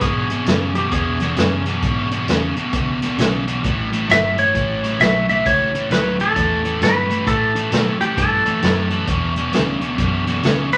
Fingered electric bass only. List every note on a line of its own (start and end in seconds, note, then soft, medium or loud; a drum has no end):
0.01 0.45 G#2 medium
0.46 0.90 F#2 medium
0.92 1.36 E2 medium
1.37 1.81 F#2 medium
1.83 2.27 G#2 medium
2.27 2.54 E2 medium
2.73 3.17 C#2 medium
3.18 3.62 B1 medium
3.64 4.08 A1 medium
4.09 4.53 G1 medium
4.55 4.98 A1 medium
5.00 5.44 B1 medium
5.46 5.89 C#2 medium
5.90 6.34 D2 medium
6.36 6.80 E2 medium
6.81 7.25 G2 medium
7.27 7.70 A2 medium
7.71 7.98 B2 medium
8.00 muted fingered electric bass stroke soft
8.17 8.44 G2 medium
8.46 muted fingered electric bass stroke soft
8.62 9.06 F#2 medium
9.08 9.51 E2 medium
9.53 9.97 D2 medium
9.98 10.42 F#2 medium
10.43 10.78 C#2 medium